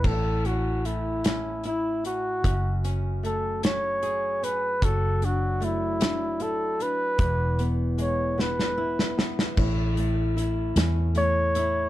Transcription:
<<
  \new Staff \with { instrumentName = "Flugelhorn" } { \time 6/8 \key a \major \tempo 4. = 50 a'8 fis'8 e'4 e'8 fis'8~ | fis'8 r8 a'8 cis''4 b'8 | a'8 fis'8 e'4 a'8 b'8~ | b'8 r8 cis''8 b'4 r8 |
r2 cis''4 | }
  \new Staff \with { instrumentName = "Nylon-string guitar" } { \time 6/8 \key a \major a,8 cis'8 a8 cis'8 e'8 cis'8 | fis,8 cis'8 a8 cis'8 gis'8 cis'8 | fis8 d'8 a8 d'8 e'8 d'8 | e,8 b8 gis8 b8 e'8 b8 |
<a, e'>8 a8 e'8 cis'8 a8 e'8 | }
  \new Staff \with { instrumentName = "Fingered electric bass" } { \clef bass \time 6/8 \key a \major a,,2. | fis,,2. | fis,,2. | e,,2. |
a,,4. e,4. | }
  \new DrumStaff \with { instrumentName = "Drums" } \drummode { \time 6/8 <cymc bd>8 hh8 hh8 <hh sn>8 hh8 hh8 | <hh bd>8 hh8 hh8 <hh sn>8 hh8 hh8 | <hh bd>8 hh8 hh8 <hh sn>8 hh8 hh8 | <hh bd>8 hh8 hh8 sn16 sn8 sn16 sn16 sn16 |
<cymc bd>8 hh8 hh8 <hh sn>8 hh8 hh8 | }
>>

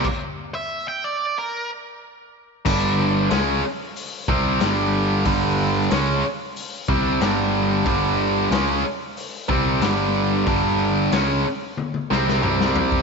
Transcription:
<<
  \new Staff \with { instrumentName = "Lead electric guitar" } { \time 4/4 \key c \major \tempo 4 = 92 r8. e''8 g''16 d''8 bes'8 r4. | r1 | r1 | r1 |
r1 | }
  \new Staff \with { instrumentName = "Distorted electric guitar" } { \clef bass \time 4/4 \key c \major r1 | <g, d g>4 <cis aes cis'>8 r4 <c g c'>8 <g, d g>4 | <g, d g>4 <cis aes cis'>8 r4 <c g c'>8 <g, d g>4 | <g, d g>4 <cis aes cis'>8 r4 <c g c'>8 <g, d g>4 |
<g, d g>4 <cis aes cis'>8 r4 <c g c'>8 <c g c'>4 | }
  \new Staff \with { instrumentName = "Picked electric bass" } { \clef bass \time 4/4 \key c \major r1 | g,,4 cis,8 r4 c,8 g,,4 | g,,4 cis,8 r4 c,8 g,,4 | g,,4 cis,8 r4 c,8 g,,4 |
g,,4 cis,8 r4 c,8 c,4 | }
  \new DrumStaff \with { instrumentName = "Drums" } \drummode { \time 4/4 <cymc bd>4 r4 r4 r4 | <cymc bd>4 <hho sn>4 hho8 bd8 <hho sn>4 | <hho bd>4 <hho sn>4 hho8 bd8 <hho sn>4 | <hho bd>4 <hho sn>4 hho8 bd8 <hho sn>4 |
<hho bd>4 <hho sn>4 tommh16 tommh16 sn16 sn16 toml16 sn16 tomfh16 bd16 | }
>>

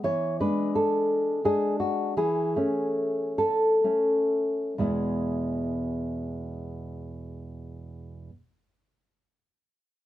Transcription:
\new Staff \with { instrumentName = "Nylon-string guitar" } { \time 6/8 \key e \major \tempo 4. = 45 << { cis''8 b'8 a'4 gis'8 fis'8 | gis'4. a'4. | <e, b, gis b e'>2.~ | <e, b, gis b e'>2. | } \\ { e8 <gis d'>4. <gis d'>4 | e8 <a cis'>4. <a cis'>4 | r2. | r2. | } >> }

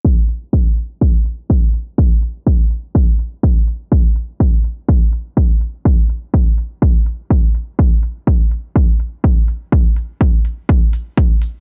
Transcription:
\new DrumStaff \with { instrumentName = "Drums" } \drummode { \time 4/4 \tempo 4 = 124 bd8 hho8 bd8 hho8 bd8 hho8 bd8 hho8 | bd8 hho8 bd8 hho8 bd8 hho8 bd8 hho8 | bd8 hho8 bd8 hho8 bd8 hho8 bd8 hho8 | bd8 hho8 bd8 hho8 bd8 hho8 bd8 hho8 |
bd8 hho8 bd8 hho8 bd8 hho8 bd8 hho8 | bd8 hho8 bd8 hho8 bd8 hho8 bd8 hho8 | }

